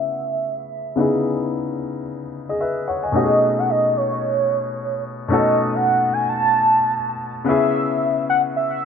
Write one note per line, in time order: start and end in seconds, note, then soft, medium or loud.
0.00 0.93 C#3 medium
0.00 0.94 B3 medium
0.00 0.95 C#4 medium
0.00 0.95 E4 medium
0.00 0.96 G#4 medium
0.00 0.68 E5 medium
0.96 2.56 C#3 medium
0.96 2.57 B3 medium
0.96 2.57 D#4 medium
1.00 2.58 E4 medium
1.00 2.32 G#4 medium
2.49 2.60 G#4 medium
2.49 2.60 D#5 medium
2.61 2.87 B4 medium
2.61 2.86 E5 medium
2.88 3.03 C#5 medium
2.88 3.03 F#5 medium
3.03 3.29 D#5 medium
3.03 3.29 G#5 medium
3.12 5.26 B2 medium
3.12 5.26 A3 medium
3.12 5.27 C#4 medium
3.12 5.27 D#4 medium
3.16 5.28 F#4 medium
3.16 3.24 G4 medium
3.16 3.60 D#5 loud
3.24 5.32 G#4 medium
3.59 3.72 F#5 loud
3.70 3.99 D#5 loud
3.97 5.05 C#5 medium
5.28 7.42 B2 medium
5.28 7.42 A3 medium
5.28 7.43 C#4 medium
5.28 7.43 D#4 medium
5.32 7.44 F#4 medium
5.32 7.45 A4 medium
5.32 5.76 D#5 medium
5.75 6.15 F#5 loud
6.13 6.28 G#5 loud
6.29 7.17 A5 loud
7.45 8.85 C#3 medium
7.45 8.85 B3 medium
7.45 8.85 C#4 medium
7.45 8.25 E5 loud
7.49 8.85 E4 medium
7.49 8.85 G#4 medium
8.30 8.41 F#5 loud
8.56 8.85 E5 medium